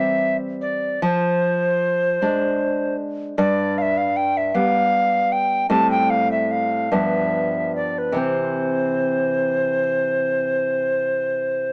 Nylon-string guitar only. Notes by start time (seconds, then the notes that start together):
Already playing: G3 C4
1.02 F3
2.22 G#3 D4
3.38 G2
4.54 G3 B3
5.70 A2 G3 C4
6.92 G2 F3 B3
8.12 C3 E3 C4